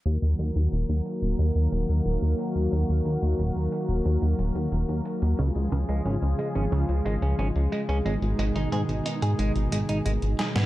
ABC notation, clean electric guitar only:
X:1
M:4/4
L:1/16
Q:1/4=90
K:Ebm
V:1 name="Clean electric guitar"
z16 | z16 | D, z D, A, D z A, D D, z A, D D z A, D | A, z A, E A z E A A, z A, E A, z A C |]